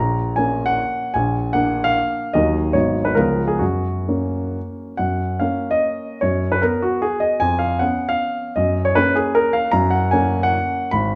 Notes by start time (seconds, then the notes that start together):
Already playing: A#5
0.00 A#1
0.36 A#3 C#4 G#5
0.66 F#5
1.14 A#1 G#5
1.53 A#3 D4 F#5
1.84 F5
2.33 D#2 F#3 A#3 D#4 D#5
2.73 G#1 F#3 B3 D#4 C#5
3.05 B4
3.15 C#2 F3 B3 C#4 A#4
3.47 G#4
3.59 F#2 F#4
4.08 A#3 C#4
4.97 F#2 F#5
5.40 A#3 C#4 F5
5.71 D#5
6.21 F#2 C#5
6.52 B4
6.62 B3 A#4
6.82 F#4
7.02 G#4
7.20 D#5
7.40 F2 G#5
7.59 F5
7.79 B3 C#4 F#5
8.09 F5
8.56 F#2 D#5
8.85 C#5
8.95 A#3 C#4 B4
9.15 G#4
9.35 A#4
9.53 F5
9.72 F#2 A#5
9.90 F#5
10.11 A#3 C#4 G#5
10.43 F#5
10.91 G#1 B5